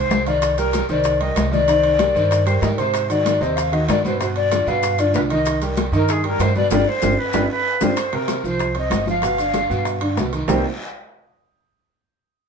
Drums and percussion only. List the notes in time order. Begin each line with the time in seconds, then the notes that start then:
0.11 high bongo, low bongo, high conga, low timbale, short guiro, maracas
0.26 high bongo, high conga, high timbale, short guiro, maracas
0.42 high bongo, high conga, high timbale, long guiro, maracas
0.58 high bongo, high conga, high timbale, maracas
0.73 high bongo, high conga, high timbale, low timbale, short guiro, maracas
0.89 high conga, short guiro, maracas
1.04 high bongo, high conga, high timbale, long guiro, maracas
1.21 high bongo, high conga, high timbale
1.36 high bongo, low bongo, high conga, high timbale, low timbale, short guiro, maracas
1.51 high bongo, high conga, short guiro, maracas
1.68 high bongo, high timbale, long guiro, maracas
1.83 high conga, high timbale
1.99 high bongo, high conga, high timbale, low timbale, short guiro, maracas
2.15 high bongo, high conga, short guiro, maracas
2.31 high bongo, high conga, high timbale, long guiro, maracas
2.47 high bongo, high conga, high timbale, maracas
2.62 high bongo, low bongo, high conga, low timbale, short guiro, maracas
2.78 high bongo, high conga, high timbale, short guiro, maracas
2.94 high bongo, high conga, high timbale, long guiro, maracas
3.10 high bongo, high conga, high timbale, maracas
3.26 high bongo, high conga, high timbale, low timbale, short guiro, maracas
3.41 high conga, short guiro, maracas
3.57 high bongo, high conga, high timbale, long guiro, maracas
3.73 high bongo, high conga, high timbale
3.89 high bongo, low bongo, high conga, high timbale, low timbale, short guiro, maracas
4.04 high bongo, high conga, short guiro, maracas
4.20 high bongo, high conga, high timbale, long guiro, maracas
4.36 high conga, high timbale
4.51 high bongo, high conga, high timbale, low timbale, short guiro, maracas
4.66 high bongo, high conga, short guiro, maracas
4.82 high bongo, high conga, high timbale, long guiro, maracas
4.98 high bongo, high conga, high timbale, maracas
5.14 high bongo, low bongo, high conga, low timbale, short guiro, maracas
5.29 high bongo, high conga, high timbale, short guiro, maracas
5.45 high bongo, high conga, high timbale, long guiro, maracas
5.62 high bongo, high conga, high timbale, maracas
5.77 high bongo, high conga, high timbale, low timbale, short guiro, maracas
5.93 high conga, short guiro, maracas
6.08 high bongo, high conga, high timbale, long guiro, maracas
6.24 high bongo, high conga, high timbale
6.39 high bongo, low bongo, high conga, high timbale, low timbale, short guiro, maracas
6.55 high bongo, high conga, short guiro, maracas
6.71 high bongo, high conga, high timbale, long guiro, maracas
7.02 high bongo, high conga, high timbale, long guiro, maracas
7.33 high bongo, high conga, high timbale, long guiro, maracas
7.81 high bongo, high conga, high timbale, long guiro, maracas
7.97 high bongo, high conga, high timbale, long guiro, maracas
8.13 high bongo, high conga, high timbale
8.28 high bongo, high conga, high timbale, low timbale, short guiro, maracas
8.44 high conga, short guiro, maracas
8.59 high bongo, high conga, high timbale, long guiro, maracas
8.75 high bongo, high conga, high timbale
8.90 high bongo, low bongo, high conga, high timbale, low timbale, short guiro, maracas
9.06 high bongo, high conga, short guiro, maracas
9.22 high bongo, high conga, high timbale, long guiro, maracas
9.38 high conga, high timbale, maracas
9.54 high bongo, high conga, high timbale, low timbale, short guiro, maracas
9.70 high bongo, high conga, short guiro, maracas
9.85 high bongo, high conga, high timbale, long guiro, maracas
10.01 high bongo, high conga, high timbale
10.17 high bongo, low bongo, high conga, low timbale, short guiro, maracas
10.33 high bongo, high conga, high timbale, short guiro, maracas
10.48 low bongo, low conga, low timbale, long guiro, maracas